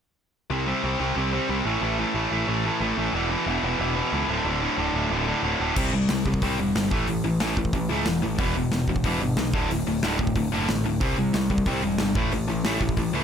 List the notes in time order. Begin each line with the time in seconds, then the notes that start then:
0.50 C2 C3 G3 C4
0.66 C3 G3 C4
0.83 C2 C3 G3 C4
0.99 C2 C3 G3 C4
1.15 C2 C3 G3 C4
1.32 C3 G3 C4
1.49 C2 C3 G3 C4
1.65 A1 A2 E3 A3
1.81 A1 A2 E3 A3
1.99 A2 E3 A3
2.14 A1 A2 E3 A3
2.32 A1 A2 E3 A3
2.47 A1 A2 E3 A3
2.65 A2 E3 A3
2.80 A1 A2 E3 A3
2.97 A1 A2 E3 A3
3.13 E1 E2 B2 E3
3.31 E2 B2 E3
3.46 E1 E2 B2 E3
3.63 E1 E2 B2 E3
3.80 E1 E2 B2 E3
3.96 E2 B2 E3
4.12 C#2 E2 B2 E3
4.28 D1 D2 A2 D3
4.45 D1 D2 A2 D3
4.62 D2 A2 D3
4.78 D1 D2 A2 D3
4.94 D1 D2 A2 D3
5.10 D1 D2 A2 D3
5.28 D2 A2 D3
5.43 D1 D2 A2 D3
5.60 D1 D2 A2 D3
5.76 C2 C3 G3 C4, kick, crash
5.92 C2 C3 G3
6.09 C2 C3 G3, snare, open hi-hat
6.25 C2 C3 G3, kick
6.34 kick
6.42 C2 C3 G3 C4, kick, open hi-hat
6.59 E1 C3 G3
6.75 G1 C3 G3, snare, open hi-hat
6.91 A1 A2 E3 A3, kick
7.07 A1 A2 E3, open hi-hat
7.24 A1 A2 E3
7.40 A1 A2 E3 A3, snare, open hi-hat
7.57 A1 A2 E3, kick
7.65 kick
7.73 A1 A2 E3, kick, open hi-hat
7.89 C#2 A2 E3 A3
8.06 E1 A2 E3, snare, open hi-hat
8.22 A1 A2 E3
8.38 E1 E2 B2 E3, kick, open hi-hat
8.56 E1 E2 B2
8.72 E1 E2 B2, snare, open hi-hat
8.88 E1 E2 B2, kick
8.96 kick
9.04 E1 E2 B2 E3, kick, open hi-hat
9.21 G1 E2 B2
9.37 B1 E2 B2, snare, open hi-hat
9.53 D1 D2 A2 D3, kick
9.70 D1 D2 A2, open hi-hat
9.87 D1 D2 A2
10.03 D1 D2 A2 D3, snare, open hi-hat
10.19 D1 D2 A2, kick
10.27 kick
10.36 D1 D2 A2, kick, open hi-hat
10.52 F#1 D2 A2 D3
10.69 A1 D2 A2, snare, open hi-hat
10.85 D1 D2 A2
11.01 C2 C3 G3 C4, kick, open hi-hat
11.18 C2 C3 G3
11.34 C2 C3 G3, snare, open hi-hat
11.50 C2 C3 G3, kick
11.58 kick
11.66 C2 C3 G3 C4, kick, open hi-hat
11.83 E1 C3 G3
11.98 G1 C3 G3, snare, open hi-hat
12.15 A1 A2 E3 A3, kick
12.32 A1 A2 E3, open hi-hat
12.47 A1 A2 E3
12.64 A1 A2 E3 A3, snare, open hi-hat
12.81 A1 A2 E3, kick
12.89 kick
12.97 A1 A2 E3, kick, open hi-hat
13.13 C#2 A2 E3 A3